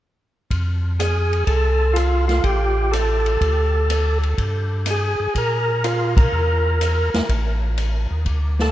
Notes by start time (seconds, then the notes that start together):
0.51 F2, kick, ride
0.99 G#4, hi-hat pedal, ride
1.33 ride
1.47 C2 A4, kick, ride
1.94 F4, hi-hat pedal, ride
2.28 F4, snare, ride
2.44 A1 G4, kick, ride
2.91 A4, hi-hat pedal, ride
3.26 ride
3.41 D2, kick, ride
3.90 hi-hat pedal, ride
4.23 ride
4.38 G2, kick, ride
4.86 hi-hat pedal, ride
4.90 G#4
5.20 G2
5.35 A#2 A#4, kick, ride
5.84 F4, hi-hat pedal, ride
6.17 A#4, kick, ride
6.32 E2
6.81 hi-hat pedal, ride
7.14 E2, snare, ride
7.29 A1, kick, ride
7.78 hi-hat pedal, ride
8.11 D#2
8.26 D2, kick, ride
8.59 A4, snare